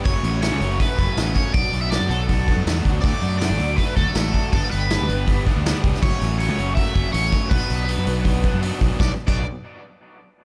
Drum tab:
CC |----------------|----------------|----------------|----------------|
HH |o-o-o-o-o-o-o-o-|o-o-o-o-o-o-o-o-|o-o-o-o-o-o-o-o-|o-o-o-o-o-o-o-o-|
SD |----o-------o---|----o-------o---|----o-------o---|----o-------o--o|
BD |o-------o-o---o-|o-------o-o---o-|o-------o-o---o-|o-------o-o---o-|

CC |----------------|----------------|---x------------|
HH |o-o-o-o-o-o-o-o-|o-o-o-o-o-o-o-o-|----------------|
SD |----------------|----------------|o---------------|
BD |o-------o-o---o-|o-------o-o---o-|o--o------------|